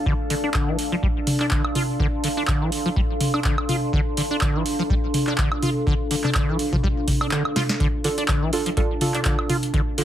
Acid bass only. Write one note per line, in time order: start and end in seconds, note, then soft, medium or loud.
0.06 0.13 D3 loud
0.30 0.35 D3 medium
0.44 0.50 D4 medium
0.54 0.69 D3 medium
0.68 0.77 E3 loud
0.92 0.96 F3 medium
1.03 1.07 G3 medium
1.40 1.46 D4 medium
1.51 1.62 D3 medium
1.76 1.83 F4 medium
2.00 2.07 D3 loud
2.24 2.28 D3 medium
2.37 2.43 D4 medium
2.48 2.63 D3 medium
2.61 2.70 E3 loud
2.86 2.89 F3 medium
2.96 3.01 G3 medium
3.34 3.40 D4 medium
3.45 3.56 D3 medium
3.69 3.76 F4 medium
3.93 4.00 D3 loud
4.17 4.22 D3 medium
4.31 4.37 D4 medium
4.42 4.57 D3 medium
4.55 4.64 E3 loud
4.79 4.83 F3 medium
4.90 4.94 G3 medium
5.27 5.33 D4 medium
5.38 5.49 D3 medium
5.63 5.70 F4 medium
5.87 5.94 D3 loud
6.11 6.15 D3 medium
6.24 6.30 D4 medium
6.35 6.50 D3 medium
6.48 6.57 E3 loud
6.73 6.76 F3 medium
6.83 6.88 G3 medium
7.21 7.27 D4 medium
7.32 7.43 D3 medium
7.56 7.63 F4 medium
7.80 7.88 D3 loud
8.04 8.09 D3 medium
8.18 8.24 D4 medium
8.29 8.43 D3 medium
8.42 8.51 E3 loud
8.66 8.70 F3 medium
8.77 8.81 G3 medium
9.14 9.20 D4 medium
9.25 9.36 D3 medium
9.49 9.57 F4 medium
9.74 9.81 D3 loud
9.98 10.02 D3 medium